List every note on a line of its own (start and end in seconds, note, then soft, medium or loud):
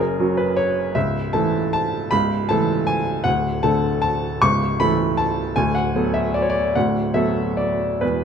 0.00 0.18 F#1 soft
0.00 0.18 F#2 soft
0.00 0.98 G#4 medium
0.00 0.38 A#4 medium
0.19 0.91 F#3 soft
0.19 0.92 C#4 soft
0.19 0.92 F#4 soft
0.37 0.57 B4 medium
0.57 0.95 C#5 medium
0.95 1.32 C#1 soft
0.95 1.32 C#2 soft
0.95 1.33 E5 medium
1.33 2.08 E3 soft
1.33 2.08 A3 soft
1.33 2.08 A4 soft
1.33 1.72 A5 medium
1.73 2.11 A5 medium
2.11 2.48 C#1 soft
2.11 2.48 C#2 medium
2.11 2.49 B5 medium
2.49 3.22 E3 soft
2.49 3.22 A3 soft
2.49 3.22 A4 soft
2.49 2.88 A5 medium
2.87 3.25 G#5 medium
3.24 3.63 D1 soft
3.24 3.62 D2 soft
3.24 3.63 F#5 medium
3.63 4.38 D3 soft
3.63 4.38 A3 soft
3.63 4.38 A4 soft
3.63 4.00 A5 medium
4.02 4.41 A5 medium
4.42 4.79 C#1 soft
4.42 4.79 C#2 soft
4.42 4.79 C#6 medium
4.80 5.53 E3 soft
4.80 5.53 A3 soft
4.80 5.53 A4 soft
4.80 5.18 B5 medium
5.17 5.56 A5 medium
5.56 5.94 D1 soft
5.56 5.94 D2 medium
5.56 5.75 G#5 medium
5.75 6.14 F#5 medium
5.96 6.71 F#3 soft
5.96 6.71 B3 soft
5.96 6.72 A4 soft
6.14 6.34 E5 medium
6.34 6.42 D5 medium
6.42 6.49 C#5 medium
6.50 6.75 D5 medium
6.75 7.14 D1 soft
6.75 7.14 D2 soft
6.75 7.15 F#5 medium
7.14 7.98 F#3 soft
7.14 7.98 B3 soft
7.14 7.98 A4 soft
7.14 7.57 E5 medium
7.57 8.02 D5 medium
8.01 8.24 E1 soft
8.01 8.24 E2 soft
8.01 8.24 B4 medium